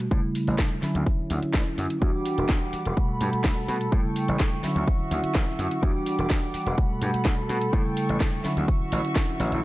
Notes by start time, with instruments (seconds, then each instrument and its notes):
0.00 closed hi-hat, tambourine
0.10 slap bass A2, tine electric piano C#3 G3 A3 E4, kick, closed hi-hat
0.24 tambourine
0.35 open hi-hat
0.47 slap bass A1, open hi-hat
0.58 kick, snare, closed hi-hat
0.82 tine electric piano D3 F#3 C#4 E4, muted slap bass stroke, snare, open hi-hat
0.95 slap bass D2, closed hi-hat, tambourine
1.06 kick, closed hi-hat
1.19 muted slap bass stroke, tambourine
1.30 slap bass D2, open hi-hat
1.43 muted slap bass stroke, closed hi-hat, tambourine
1.54 slap bass A1, kick, snare, closed hi-hat
1.78 slap bass F#2, open hi-hat
1.89 closed hi-hat, tambourine
2.01 slap bass E2, tine electric piano E3 G3 D4 F#4, violin section G3 F#5 D6, kick, closed hi-hat
2.14 tambourine
2.26 open hi-hat
2.38 slap bass E1, closed hi-hat, tambourine
2.49 kick, snare, closed hi-hat
2.73 muted slap bass stroke, open hi-hat
2.85 slap bass E1, closed hi-hat, tambourine
2.96 tine electric piano B2 G3 A3 F#4, violin section A4 B5, kick, closed hi-hat
3.09 muted slap bass stroke, tambourine
3.21 slap bass G2, open hi-hat
3.33 muted slap bass stroke, closed hi-hat, tambourine
3.44 slap bass D2, kick, snare, closed hi-hat
3.68 slap bass B2, open hi-hat
3.81 closed hi-hat, tambourine
3.91 slap bass A2, tine electric piano C#3 A3 E4, violin section G5 C#6, kick, closed hi-hat
4.05 tambourine
4.16 open hi-hat
4.28 slap bass A1, closed hi-hat, tambourine
4.39 slap bass A2, kick, snare, closed hi-hat
4.52 tambourine
4.62 tine electric piano D3 F#3 C#4 E4, violin section F#4 E5, muted slap bass stroke, snare, open hi-hat
4.76 slap bass D2, closed hi-hat, tambourine
4.87 kick, closed hi-hat
4.99 muted slap bass stroke, tambourine
5.11 slap bass D2, open hi-hat
5.24 muted slap bass stroke, closed hi-hat, tambourine
5.35 slap bass A1, kick, snare, closed hi-hat
5.59 slap bass F#2, open hi-hat
5.71 closed hi-hat, tambourine
5.81 slap bass E2, tine electric piano E3 G3 D4 F#4, violin section G3 F#5 D6, kick, closed hi-hat, tambourine
5.95 tambourine
6.06 open hi-hat
6.19 slap bass E1, closed hi-hat, tambourine
6.30 slap bass E2, kick, snare, closed hi-hat
6.54 muted slap bass stroke, open hi-hat
6.66 slap bass E1, closed hi-hat, tambourine
6.77 tine electric piano B2 G3 A3 F#4, violin section A4 B5, kick, closed hi-hat
6.90 muted slap bass stroke, tambourine
7.02 slap bass G2, open hi-hat
7.14 muted slap bass stroke, closed hi-hat, tambourine
7.25 slap bass D2, kick, snare, closed hi-hat
7.38 tambourine
7.49 slap bass B2, open hi-hat
7.61 closed hi-hat, tambourine
7.73 slap bass A2, tine electric piano E4, violin section G5 C#6, kick, closed hi-hat, tambourine
7.85 tambourine
7.97 open hi-hat
8.09 slap bass A1, closed hi-hat, tambourine
8.20 slap bass A2, kick, snare, closed hi-hat
8.34 tambourine
8.43 tine electric piano D3 F#3 C#4 E4, violin section F#4 E5 C#6, muted slap bass stroke, snare, open hi-hat
8.57 slap bass D2, closed hi-hat, tambourine
8.68 kick, closed hi-hat, tambourine
8.81 muted slap bass stroke, tambourine
8.92 slap bass A1, open hi-hat
9.05 closed hi-hat, tambourine
9.16 kick, snare, closed hi-hat
9.29 tambourine
9.40 slap bass A1, open hi-hat
9.52 slap bass A1, closed hi-hat, tambourine